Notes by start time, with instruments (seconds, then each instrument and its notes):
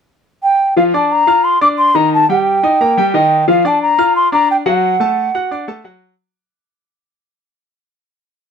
0.43 bansuri G5
0.77 grand piano F3 F4 F5, bansuri F5
0.94 grand piano D4 D5 D6, bansuri A5
1.12 bansuri A#5
1.27 grand piano F4 F5 F6
1.44 bansuri C6
1.61 grand piano D4 D5 D6, bansuri D6
1.78 bansuri C6
1.95 grand piano D#3 D#4 D#5, bansuri A#5
2.14 bansuri A5
2.29 grand piano G3 G4 G5, bansuri G5
2.63 grand piano D#4 D#5 D#6
2.81 grand piano A#3 A#4 A#5
2.97 grand piano G3 G4 G5
3.14 grand piano D#3 D#4 D#5, bansuri G5
3.48 grand piano F3 F4 F5, bansuri F5
3.65 grand piano D4 D5 D6, bansuri A5
3.82 bansuri A#5
3.98 grand piano F4 F5 F6
4.16 bansuri C6
4.32 grand piano D4 D5 D6, bansuri A#5
4.51 bansuri G5
4.66 grand piano F#3 F#4 F#5, bansuri F#5
5.00 grand piano A3 A4 A5
5.35 grand piano F#4 F#5 F#6
5.51 grand piano D4 D5 D6
5.68 grand piano A3 A4 A5
5.84 grand piano F#3 F#4 F#5